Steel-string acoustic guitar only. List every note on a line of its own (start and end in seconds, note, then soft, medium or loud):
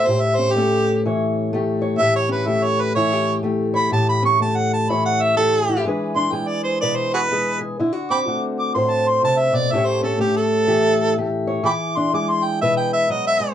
0.00 0.12 A3 medium
0.07 1.99 A2 medium
0.07 1.54 G4 medium
0.38 0.57 C#4 medium
0.56 1.53 A3 medium
0.56 2.03 C#4 medium
1.05 2.96 E3 medium
1.05 1.81 C#5 medium
1.53 2.03 A3 medium
1.53 2.00 G4 medium
1.82 2.03 C#5 medium
2.00 3.90 A2 medium
2.00 2.47 G4 medium
2.29 3.89 C#4 medium
2.47 3.42 A3 medium
2.47 2.96 G4 medium
2.96 4.89 E3 medium
2.96 3.12 E4 medium
3.12 3.43 G4 medium
3.43 3.89 A3 medium
3.43 3.90 G4 medium
3.74 3.90 C#5 medium
3.91 5.85 A2 medium
3.91 4.39 G4 medium
4.22 5.83 C#4 medium
4.40 5.36 A3 medium
4.40 5.37 G4 medium
4.89 5.83 E3 medium
4.89 5.84 C#5 medium
5.38 5.83 A3 medium
5.38 5.67 G4 medium
5.69 5.77 E4 medium
5.77 5.85 G4 soft
5.85 7.76 E3 medium
5.85 6.31 G#3 medium
5.85 6.15 D4 medium
5.85 6.31 G#4 medium
5.85 6.81 B4 medium
6.16 7.76 D4 medium
6.32 7.29 G#3 medium
6.32 7.29 G#4 medium
6.82 7.76 B2 medium
6.82 7.76 B4 medium
7.31 7.76 G#3 medium
7.31 7.60 G#4 medium
7.61 7.76 G#4 medium
7.80 9.72 D3 medium
7.80 7.93 E4 medium
7.93 8.26 F#4 medium
8.10 9.72 C4 medium
8.27 9.69 A3 medium
8.27 9.70 F#4 medium
8.75 9.23 A2 medium
8.75 9.70 C5 medium
9.23 9.52 C3 medium
9.53 9.71 B2 medium
9.73 11.66 A2 medium
9.73 10.18 A3 medium
9.73 10.01 C#4 medium
9.73 10.67 G4 medium
9.73 11.46 C#5 medium
10.03 10.19 C#4 medium
10.19 11.16 A3 medium
10.19 11.63 C#4 medium
10.67 11.63 E3 medium
10.67 11.16 G4 medium
11.18 11.63 A3 medium
11.18 11.64 G4 medium
11.47 11.63 C#5 medium
11.64 13.09 E3 medium
11.64 12.13 G#4 medium
11.97 13.54 D4 medium
12.13 13.39 G#3 medium
12.13 13.54 G#4 medium
12.62 13.54 B2 medium
12.62 13.54 B4 medium
13.10 13.40 F#3 medium
13.40 13.54 G#3 medium